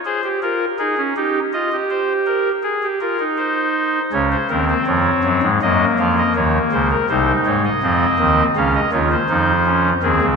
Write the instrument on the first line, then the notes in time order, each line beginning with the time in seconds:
pipe organ
0.05 G#4 C5
0.23 G4
0.42 F4 A#4
0.79 D#4 G#4
0.97 C#4
1.16 D#4 G4
1.53 F4 D#5
1.72 G4
1.90 C5
2.26 A#4
2.63 G#4
2.83 G4
3.00 F4 A#4
3.19 D#4
3.37 C5
4.12 C#2 C#3 C#4 C#5
4.32 C5
4.50 D#2 D#3 C4 A#4
4.69 C5
4.86 F2 F3 C#5
5.24 F#2 F#3
5.43 G#2 G#3
5.62 F#2 F#3 A#3 D#5
5.99 F2 F3 F5
6.17 D#5
6.35 D#2 D#3 C#5
6.72 C#2 C#3 C5
6.90 A#4
7.09 C2 C3 D#4 C5
7.46 G#2 G#3 C#5
7.65 D#5
7.82 F2 F3 C4
8.19 D#2 D#3
8.56 C#2 C#3 C#4 F5
8.75 D#5
8.92 D#2 D#3 F4 C#5
9.11 C5
9.29 F2 F3 D#4
9.66 C#4
10.03 D#2 D#3 C4 G#4
10.21 C#2 C#3